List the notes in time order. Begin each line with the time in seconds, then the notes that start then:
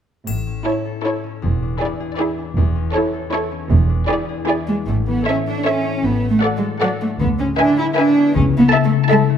0.27 A1 A2, triangle
0.47 C#4
0.65 E4 A4 C#5
0.85 A4
1.04 E4 A4 C#5
1.24 C#4
1.42 E1 E2
1.63 D4
1.81 E4 G#4 D5
2.00 G#4
2.18 E4 G#4 D5
2.38 D4
2.57 E1 E2
2.76 C#4
2.94 E4 A4 C#5
3.13 A4
3.32 E4 A4 C#5
3.51 C#4
3.70 E1 E2
3.89 D4
4.08 E4 G#4 D5
4.29 G#4
4.47 E4 G#4 D5
4.68 G#3 D4
4.87 A1 A2 A3
5.08 E3 B3
5.27 C#4 E4 A4 C#5 E5
5.47 D4 A4
5.66 C#4 E4 A4 C#5 E5
5.86 C#4
6.05 A1 A2 B3
6.24 A3
6.31 A3
6.43 F#4 A4 D5 F#5
6.57 G#3
6.63 A4
6.80 F#3 F#4 A4 D5 F#5
7.01 A3 D4
7.20 D2 D3 B3
7.39 G#3 C#4
7.58 D4 E4 B4 E5 G#5
7.77 E4 G#4
7.96 D4 E4 B4 E5 G#5
8.15 B3
8.34 C#2 C#3 C#4
8.53 C#4
8.59 B3
8.72 E4 A4 E5 A5
8.84 A3
8.91 A4
9.10 G#3 E4 A4 E5 A5
9.30 A3